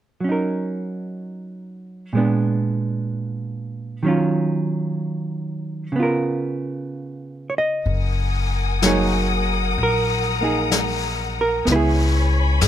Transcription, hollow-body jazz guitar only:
0.20 F#3 C#4
0.29 D#4 A#4
2.13 A#2 G#3 B3
2.17 D4
4.03 D#3 F#3 C#4
4.08 F4
5.92 C#3 B3
6.00 F4 A#4
7.50 C#5
7.58 D#5
8.82 F#3 A#3 D#4 C#5
8.87 G#4
9.83 A#4
10.41 A#3 D#4 G#4
11.41 A#4
11.65 B3
11.71 E4 B4
11.76 G#4

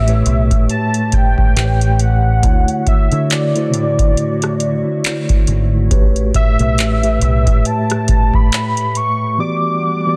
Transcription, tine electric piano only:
Already playing: A2 A3 G4 B4 C#5 E5
0.07 A2 A3 G4 B4 C#5
1.55 A2 A3 G4 B4 C5
1.64 C#5
2.43 D3 A3 E4 F#4 C#5
3.11 D3 A3 E4 F#4 C#5
3.55 D3 A3 E4 F#4 C5
3.63 D5
5.90 A2 A3 G4 B4 C#5
6.59 A2 A3 G4 B4 E5
7.02 A2 A3 G4 B4 E5
9.38 E3 B3 F#4 G4 D5
10.07 E3 B3 F#4 G4 D5

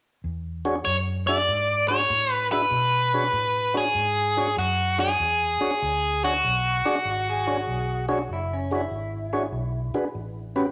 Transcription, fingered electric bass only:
0.24 E2
0.86 F#2
1.48 G#2
2.10 A2
2.71 B2
3.33 A2
3.95 G#2
4.57 F#2
5.20 E2
5.61 muted fingered electric bass stroke
5.82 D2
6.44 B1
7.05 G#1
7.67 B1
8.29 F#1
8.91 G#1
9.52 B1
10.15 A1

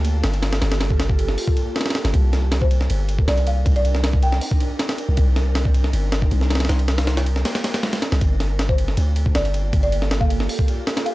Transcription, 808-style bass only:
Already playing: D2
0.24 G1
0.62 G1
2.05 G1
2.14 C2
2.90 G1
3.28 C2
3.66 C2
5.09 C2
5.18 C2
5.93 G1
6.32 C2
6.70 C2
8.12 C2
8.21 G1
8.98 D2
9.36 G1
9.73 G1

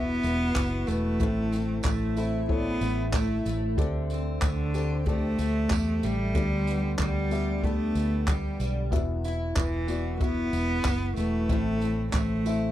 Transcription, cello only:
Already playing: B3
0.88 A3
1.85 A3
2.50 B3
3.14 A3
4.45 D3
5.09 A3
6.05 G3
7.00 G3
7.64 A3
8.29 G3
9.57 E3
10.21 B3
11.17 A3
12.13 A3

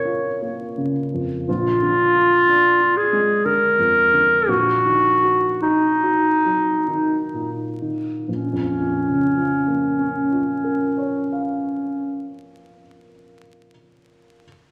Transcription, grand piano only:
Already playing: A#1 C#3 C#4 F4 A#4 C#5 F5 A#5
0.05 F4
0.42 A#3
0.78 C#3
1.14 F2
1.49 A#1
1.82 D3
2.15 F4
2.47 D4
2.80 F4
3.13 G#3
3.45 D3
3.79 F2
4.13 D3
4.48 A#1
4.85 D#3
5.23 F#4
5.63 D#4
6.03 F#4
6.45 F#3
6.88 D#3
7.34 A#2
7.82 D#3
8.28 A#1
8.53 F2
8.80 A#2
9.08 C#3
9.37 F3
9.68 A#3
9.99 C#4
10.31 F4
10.64 A#4
10.98 C#5
11.32 F5

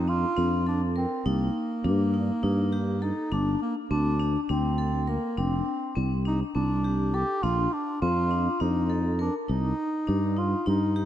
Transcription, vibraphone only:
0.08 D4
0.37 D4
0.66 A4
0.96 A#4
1.26 D#4
1.84 D4
2.14 D#4
2.43 D#4
2.72 G4
3.02 A4
3.32 D4
3.91 C4
4.19 D4
4.49 D4
4.78 A4
5.07 A#4
5.38 D4
5.96 C4
6.25 D4
6.55 C4
6.84 G4
7.14 A4
7.43 D4
8.02 C4
8.31 D4
8.60 D4
8.90 A4
9.19 A#4
9.48 D#4
10.07 D4
10.36 D#4
10.66 D#4
10.96 G4

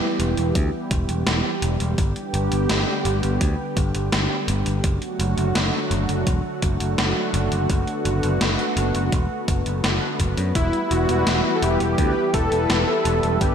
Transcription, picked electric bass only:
0.20 E1
0.37 E1
0.55 D2
0.91 E1
1.09 E1
1.27 E1
1.62 E1
1.80 E1
1.98 G1
2.34 G1
2.52 G1
3.05 G1
3.23 G1
3.41 D2
3.77 G1
3.95 G1
4.12 G1
4.48 G1
4.66 G1
4.84 F#1
5.19 F#1
5.37 F#1
5.55 F#1
5.91 F#1
6.09 F#1
6.27 E1
6.62 F#1
6.80 F#1
6.98 F#1
7.34 F#1
7.52 F#1
7.70 F#1
8.05 F#1
8.23 F#1
8.41 F#1
8.77 F#1
8.95 F#1
9.12 E1
9.48 F#1
9.66 F#1
9.84 F#1
10.20 F#1
10.37 F#2
10.55 E1
10.91 E1
11.09 E1
11.27 E1
11.62 E1
11.80 E1
11.98 D2
12.34 E1
12.52 E1
12.69 E1
13.05 E1
13.23 E1
13.41 G1

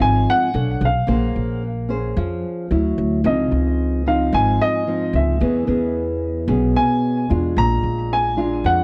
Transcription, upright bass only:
0.00 G#1
0.54 B1
0.81 B1
1.08 A#1
1.36 A#1
2.17 F2
2.71 D2
2.98 D2
3.24 C#2
3.52 C#2
4.33 G#1
5.13 C#2
5.41 E2
5.68 E2
6.48 B1
7.31 E2
7.57 A#1
7.83 A#1
8.64 F2

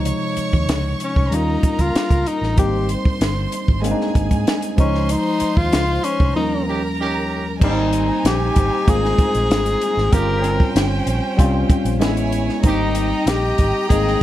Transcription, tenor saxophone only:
1.04 C#4
1.34 D#4
1.81 F4
2.27 D#4
2.59 G4
4.79 C#4
5.11 D#4
5.57 F4
6.04 C#4
6.36 D#4
7.64 D#4
8.26 G4
8.89 G#4
10.13 A#4
12.65 D#4
13.28 G4
13.89 G#4

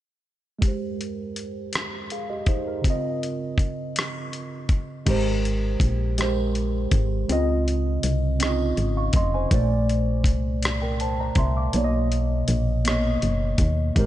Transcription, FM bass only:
5.07 G#1
5.80 A#1
6.92 G#1
7.30 C#2
8.04 C2
8.78 G#1
9.14 F1
9.51 A#1
10.25 C2
11.36 C2
11.74 B1
12.48 A#1
13.23 F#1
13.59 D#2
13.96 G#1

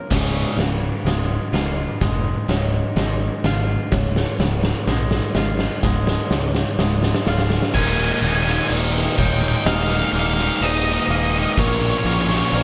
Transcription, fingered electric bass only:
0.11 C#1
0.57 C#1
1.05 C#1
1.53 C#1
2.01 F1
2.49 C#1
2.96 G#1
3.44 G#1
3.92 C#1
4.39 C#1
4.87 A#1
5.35 G#1
5.83 C#1
6.31 C#2
6.79 C#1
7.27 C#1
7.75 D#1
8.22 D#1
8.70 D#1
9.18 D#1
9.66 D#1
10.13 D#1
10.61 D#1
11.08 D#1
11.58 A#1
12.05 A#1
12.53 A#1

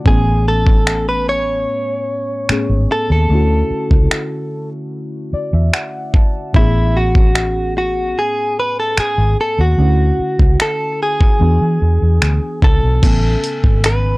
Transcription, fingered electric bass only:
0.06 A1
2.49 muted fingered electric bass stroke
2.69 G#1
3.10 D#2
3.30 D2
3.71 muted fingered electric bass stroke
3.91 C#2
5.33 muted fingered electric bass stroke
5.53 E2
6.54 A1
8.98 muted fingered electric bass stroke
9.18 G#1
9.59 D#2
9.79 D2
10.19 muted fingered electric bass stroke
10.39 C#2
11.41 E2
11.61 E3
11.82 E2
12.02 E2
12.22 D2
12.62 C#2
12.83 B1
13.03 A1
13.64 G#1

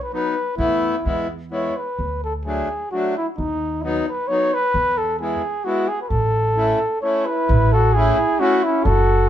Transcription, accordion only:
0.13 F#3 B3 D#4
0.58 A3 B3 E4
1.04 G#3 B3 E4
1.51 G#3 B3 E4
2.45 F#3 A3 D4
2.92 F#3 A3 D4
3.83 F#3 B3 D#4
4.30 F#3 B3 D#4
5.20 G#3 B3 E4
5.66 G#3 B3 E4
6.57 A3 C#4 E4
7.03 A3 C#4 E4
7.96 A3 C#4 E4
8.40 A3 C#4 E4

